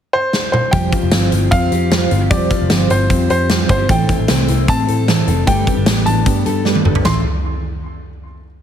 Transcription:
0.13 upright piano C5
0.33 snare
0.52 upright piano C5, mid tom
0.71 picked electric bass F1, steel-string acoustic guitar F3 G3 C4 F4 C5, clean electric guitar G4, upright piano G5, kick, closed hi-hat
0.91 steel-string acoustic guitar C4 F4 C5, kick, closed hi-hat
1.03 picked electric bass F1
1.11 picked electric bass G1, steel-string acoustic guitar F3 G3 C4 F4 C5, snare, closed hi-hat
1.31 picked electric bass G1, steel-string acoustic guitar C4 F4 C5, closed hi-hat
1.51 picked electric bass F2, steel-string acoustic guitar G3 F4 C5, clean electric guitar C4, upright piano F5, kick, closed hi-hat
1.71 picked electric bass F2, steel-string acoustic guitar C4 F4 C5, clean electric guitar G4, closed hi-hat
1.90 steel-string acoustic guitar F3 G3 C4 F4 C5, snare, closed hi-hat
2.10 picked electric bass G1, steel-string acoustic guitar C4 F4 C5, closed hi-hat
2.21 clean electric guitar G4
2.30 picked electric bass F1, steel-string acoustic guitar F3 G3 C4 F4 C5, clean electric guitar G4, upright piano D5, kick, closed hi-hat
2.50 steel-string acoustic guitar C4 F4 C5, kick, closed hi-hat
2.61 picked electric bass F1
2.70 picked electric bass G1, steel-string acoustic guitar F3 G3 C4 F4 C5, snare, closed hi-hat
2.89 picked electric bass G1, steel-string acoustic guitar C4 F4 C5, upright piano C5, closed hi-hat
3.10 picked electric bass F2, steel-string acoustic guitar G3 C4 F4 C5, kick, closed hi-hat
3.29 picked electric bass F2, steel-string acoustic guitar C4 F4 C5, clean electric guitar G4, upright piano C5, closed hi-hat
3.49 steel-string acoustic guitar F3 G3 C4 F4 C5, snare, closed hi-hat
3.69 picked electric bass G1, steel-string acoustic guitar C4 F4 C5, upright piano C5, kick, closed hi-hat
3.79 clean electric guitar G4
3.89 picked electric bass A1, steel-string acoustic guitar A2 E3 A3 C4 E4 C5, clean electric guitar A4, upright piano G5, kick, closed hi-hat
4.08 steel-string acoustic guitar A3 C4 E4 C5, kick, closed hi-hat
4.19 picked electric bass A1
4.28 picked electric bass C2, steel-string acoustic guitar A2 E3 A3 C4 E4 C5, snare, closed hi-hat
4.48 picked electric bass C2, steel-string acoustic guitar A3 C4 E4 C5, closed hi-hat
4.67 picked electric bass A2, steel-string acoustic guitar A3 C4 E4 C5, upright piano A5, kick, closed hi-hat
4.88 picked electric bass A2, steel-string acoustic guitar A3 C4 E4 C5, clean electric guitar A4, closed hi-hat
5.07 steel-string acoustic guitar A2 E3 A3 C4 E4 C5, snare, closed hi-hat
5.27 picked electric bass F1, steel-string acoustic guitar A3 C4 E4 C5, clean electric guitar A4, closed hi-hat
5.47 picked electric bass G1, steel-string acoustic guitar G3 A3 D4 G4 B4, clean electric guitar A4, upright piano G5, kick, closed hi-hat
5.67 clean electric guitar C4, steel-string acoustic guitar D4 G4 B4, kick, closed hi-hat
5.77 picked electric bass G1, clean electric guitar D4
5.86 picked electric bass A1, steel-string acoustic guitar G3 A3 D4 G4 B4, clean electric guitar B3, snare, closed hi-hat
6.06 picked electric bass A1, steel-string acoustic guitar D4 G4, upright piano A5, closed hi-hat
6.25 picked electric bass G2, steel-string acoustic guitar A3 D4 G4 B4, clean electric guitar B3, kick, closed hi-hat
6.45 picked electric bass G2, steel-string acoustic guitar D4 G4 B4, clean electric guitar A4, closed hi-hat
6.65 steel-string acoustic guitar G3 A3 D4 G4 B4, snare
6.75 high tom
6.84 picked electric bass G1, steel-string acoustic guitar D4 G4 B4, clean electric guitar A4, mid tom
6.95 floor tom
7.05 picked electric bass A1, steel-string acoustic guitar A2 E3 A3 C4 E4 C5, clean electric guitar A4, upright piano C6, snare, floor tom, crash

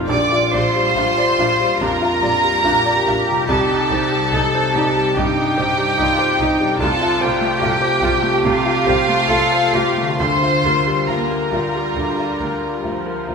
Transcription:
Already playing: grand piano F2 C4 D#4 C5, harp A#2 G3
0.00 harp F4 D5
0.08 double bass section A#1, grand piano A#1, viola section G3 D4, cello section F4, violin section D5 D6
0.32 grand piano F4
0.51 double bass section A#1, viola section G3 D4, violin section C5 C6, grand piano D5
0.75 grand piano G3
0.95 double bass section A#1, viola section G3 D4, grand piano F4
1.18 grand piano D5
1.38 double bass section A#1, viola section G3 D4, grand piano F4
1.60 grand piano G3
1.79 double bass section A#1, grand piano F2, viola section G3 D4, violin section A#4 A#5
2.01 grand piano F4
2.21 double bass section A#1, viola section G3 D4, grand piano D5
2.44 grand piano G3
2.64 double bass section A#1, viola section G3 D4, grand piano F4, cello section G4
2.86 grand piano D5
3.07 double bass section A#1, viola section G3 D4, grand piano F4
3.28 harp C3, grand piano G3
3.35 harp G3
3.40 harp D#4
3.44 harp C5
3.49 double bass section C2, grand piano C2, viola section G3 D#4, violin section A4 A5
3.70 grand piano D#4
3.90 double bass section C2, viola section G3 D#4, grand piano C5
4.12 grand piano G3
4.32 double bass section C2, viola section G3 D#4, grand piano D#4, cello section A4
4.55 grand piano C5
4.74 double bass section C2, viola section G3 D#4, grand piano D#4, cello section G4
4.96 grand piano G3
5.16 double bass section C2, grand piano G2, viola section G3 D#4, cello section D#4, violin section G4 G5
5.37 grand piano D#4
5.57 double bass section C2, viola section G3 D#4, grand piano C5
5.78 grand piano G3
5.97 double bass section C2, viola section G3 D#4, grand piano D#4, cello section F4
6.19 grand piano C5
6.39 double bass section C2, viola section G3 D#4, grand piano D#4, cello section D#4
6.60 harp C3, grand piano G3
6.68 harp A3
6.72 harp F4
6.77 grand piano C2, harp C5
6.81 double bass section C2, viola section A3 F4, cello section F4, violin section A4 A5
7.02 grand piano F4
7.21 double bass section C2, viola section A3 F4, violin section G4 G5, grand piano C5
7.41 grand piano A3
7.62 double bass section C2, viola section A3 F4, grand piano F4, cello section G4
7.81 grand piano C5
8.03 double bass section C2, viola section A3 F4, grand piano F4
8.22 grand piano A3
8.44 double bass section C2, grand piano C3, viola section A3 F4, violin section F4 F5
8.66 grand piano F4
8.86 double bass section C2, viola section A3 F4, grand piano C5
9.08 grand piano A3
9.29 double bass section C2, viola section A3 F4, grand piano F4, cello section A4
9.52 grand piano C5
9.73 double bass section C2, viola section A3 F4, grand piano F4, cello section G4
9.97 grand piano A3
10.01 harp D3
10.05 harp G3
10.10 harp F4
10.15 viola section G3 F4, harp A#4
10.19 double bass section D2, grand piano D2, cello section F4, violin section C5 C6
10.42 grand piano F4
10.64 double bass section D2, viola section G3 F4, grand piano A#4
10.86 grand piano G3
11.08 double bass section D2, viola section A#3, grand piano F4, violin section A#4 A#5
11.31 grand piano A#4
11.52 double bass section D2, viola section G3, grand piano F4
11.75 grand piano G3
11.96 double bass section D2, grand piano D2
12.19 grand piano F4
12.40 double bass section D2, grand piano A#4
12.61 grand piano G3
12.83 double bass section D2, viola section F3, grand piano F4
13.06 grand piano A#4
13.28 double bass section D2, grand piano F4

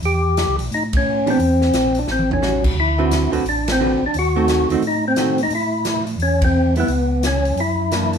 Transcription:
0.02 tonewheel organ E2 G4, open hi-hat
0.37 snare, closed hi-hat
0.47 tonewheel organ C#2
0.59 tonewheel organ B1, open hi-hat
0.71 tonewheel organ A2 D#4, open hi-hat
0.93 tonewheel organ C#4, kick, ride
1.26 hollow-body jazz guitar E3 B3 D4 G4, open hi-hat
1.30 tonewheel organ C4
1.39 tonewheel organ E2, open hi-hat
1.62 snare
1.73 tonewheel organ A#1, snare, closed hi-hat
1.95 open hi-hat
1.99 tonewheel organ D4
2.07 tonewheel organ A1, snare
2.12 tonewheel organ C4
2.19 high tom
2.31 tonewheel organ C#4, floor tom
2.42 hollow-body jazz guitar G3 C#4 F#4, snare
2.64 kick, crash
2.75 tonewheel organ D2
2.80 tonewheel organ E4
2.98 hollow-body jazz guitar D3 C4 F#4 B4
3.11 snare, closed hi-hat
3.31 tonewheel organ D2, hollow-body jazz guitar D3 C4 F#4 B4, open hi-hat
3.45 tonewheel organ A1, open hi-hat
3.49 tonewheel organ D4
3.68 snare, ride
3.72 tonewheel organ C4
3.80 hollow-body jazz guitar D3 C4 F#4 B4
4.02 tonewheel organ A1
4.06 tonewheel organ D4
4.14 tonewheel organ D#2, open hi-hat
4.19 tonewheel organ F#4
4.36 hollow-body jazz guitar D#3 A3 C4 F#4
4.48 snare, closed hi-hat
4.70 tonewheel organ D#2, hollow-body jazz guitar D#3 A3 C4 F#4, open hi-hat
4.82 tonewheel organ A2, open hi-hat
4.87 tonewheel organ D#4
5.08 tonewheel organ C4
5.16 hollow-body jazz guitar D#3 A3 C4 F#4, snare, closed hi-hat
5.38 open hi-hat
5.43 tonewheel organ D#4
5.50 tonewheel organ A2, open hi-hat
5.55 tonewheel organ E4
5.85 snare, closed hi-hat
6.07 open hi-hat
6.18 tonewheel organ E2, open hi-hat
6.22 tonewheel organ C#4
6.42 tonewheel organ C4, kick, ride
6.76 hollow-body jazz guitar G3 B3 E4, open hi-hat
6.80 tonewheel organ B3
6.88 tonewheel organ C#2, open hi-hat
7.23 tonewheel organ C#4, snare, closed hi-hat
7.45 open hi-hat
7.56 tonewheel organ F#2, open hi-hat
7.60 tonewheel organ E4
7.91 hollow-body jazz guitar E3 A#3 D4, snare, closed hi-hat
8.13 open hi-hat

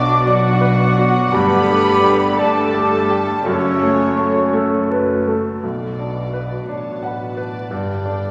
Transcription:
Already playing: double bass section B1, grand piano B1 B3 F#4, french horn section F#3 D4, viola section B3 F#4, cello section D4, clarinet F#4, violin section D5 D6, cor anglais D5, flute section D6
0.24 cello section F#3, violin section F#4 F#5, clarinet F#4, cor anglais D5, grand piano D5, flute section F#5
0.61 grand piano B4
0.97 grand piano F#4
1.32 double bass section G1, grand piano G2, french horn section G3 D4, viola section A3 A4, cello section B3, clarinet G4, violin section B4 B5, cor anglais D5, flute section B5
1.70 grand piano A3
2.04 grand piano G4
2.37 cello section A3, clarinet G4, violin section A4 A5, cor anglais D5, grand piano D5, flute section A5
2.74 grand piano A4
3.10 grand piano G4
3.44 double bass section F#1, grand piano F#2, cello section C#3, french horn section A3 C#4, violin section C#4 C#5, viola section F#4, clarinet A4, cor anglais C#5, flute section C#5
3.82 grand piano A3
4.18 grand piano A4
4.53 grand piano A3, clarinet A4
4.91 grand piano A4, clarinet B4
5.27 grand piano A3, clarinet A4
5.62 grand piano B1, double bass section B1, cello section B2, viola section F#4, violin section D5 F#5
5.99 grand piano D4
6.33 grand piano B4
6.68 double bass section A1, cello section A2, grand piano D4, violin section C#5 A5
7.03 violin section B4, grand piano F#5
7.37 grand piano B4, violin section D5
7.70 double bass section G1, cello section G2, grand piano G2, viola section G4, violin section D5 G5
8.04 grand piano D4, viola section A4

